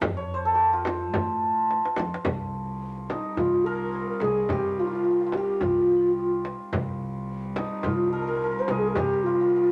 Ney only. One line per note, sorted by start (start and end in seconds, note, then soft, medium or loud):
3.09 3.39 D#4 medium
3.37 3.66 F4 medium
3.65 4.07 A#4 medium
4.10 4.24 A#4 medium
4.22 4.51 G#4 medium
4.49 4.81 G4 medium
4.80 4.87 F4 medium
4.86 4.95 D#4 medium
4.93 5.36 F4 medium
5.35 5.63 G4 medium
5.62 6.16 F4 medium
6.16 6.43 F4 medium
7.57 7.86 D#4 medium
7.85 8.12 F4 medium
8.13 8.61 A#4 medium
8.60 8.72 C5 medium
8.71 8.80 A#4 medium
8.79 8.89 G#4 medium
8.88 8.96 A#4 medium
8.95 9.25 G4 medium
9.24 9.72 F4 medium